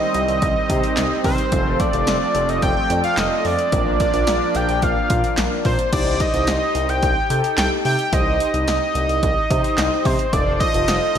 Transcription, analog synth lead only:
Already playing: D#5
1.25 C5
1.79 D5
2.49 D#5
2.63 G5
3.04 F5
3.18 D#5
3.46 D5
4.01 D5
4.56 G5
4.83 F5
5.66 C5
5.93 D5
6.21 D#5
6.89 G5
7.58 G5
7.85 G5
8.13 D#5
8.68 D#5
10.06 C5
10.33 D5
10.60 D#5

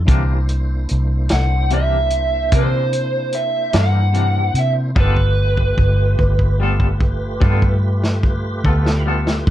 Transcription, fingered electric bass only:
0.08 C2
0.91 C2
1.32 C2
2.52 C3
3.74 G2
4.54 C3
4.97 G1
5.77 G1
6.19 G1
7.42 G2
8.64 D2
9.47 G2

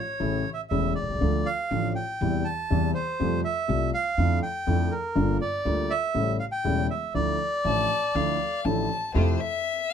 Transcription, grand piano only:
0.20 A1 A2 C#3 E3 A3 E4
0.71 E1 E2 C#3 E3 A3 E4
1.03 B1
1.09 C2
1.15 C#2
1.21 D2 D3 F3 A3 F4
1.71 A1 A2 D3 F3 A3 F4
2.21 E2 C3 E3 G3 E4
2.70 E2 C3 E3 G3 E4
3.20 F2 C3 F3 G3 A3 F4
3.68 C2 C3 G3 A3 F4
4.18 F2 D3 F3 A3 E4
4.67 F2 D3 F3 A3 E4
5.15 G1 G2 D3 G3 A#3 F4
5.65 D2 D3 G3 A#3 F4
6.14 A1 A2 C#3 G3 A3 E4
6.64 E1 E2 C#3 G3 A3 E4
7.14 D2 D3 F3 A3 E4
7.64 A1 A2 D3 F3 A3 E4
8.15 D2 D3 F3 A3 E4
8.65 A1 A2 D3 F3 A3 E4
9.14 F2 C3 F3 A3 E4

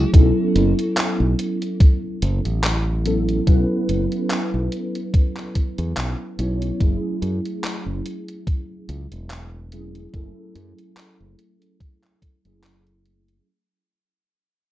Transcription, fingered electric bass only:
0.14 B1
0.55 F#1
1.20 B1
2.22 F#1
2.45 A1
3.47 B1
3.89 F#1
4.54 B1
5.78 E2
5.97 B1
6.39 B1
6.80 F#1
7.22 F#2
7.86 F#1
8.89 C#2
9.12 E1
10.14 F#1
10.55 F#2
11.20 F#1
12.45 F#1

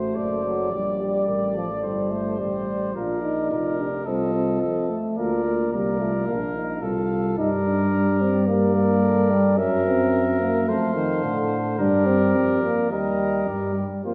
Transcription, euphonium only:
Already playing: A3
0.45 F#3
0.72 G3
1.00 G3
1.55 F3
1.82 G3
2.11 A3
2.38 G3
2.95 F4
3.22 D#4
3.78 D4
4.06 C4
4.34 C4
4.90 A3
5.17 A#3
5.45 A#3
5.99 A3
6.27 A#3
7.37 D#4
7.65 D4
8.21 C4
8.47 A#3
8.75 A#3
9.30 G3
9.58 C#4
9.85 C4
10.40 A#3
10.68 A3
10.95 D#3
11.23 D3
11.78 D4
12.06 C4
12.63 A#3
12.90 G3
13.76 G3
14.05 A#3

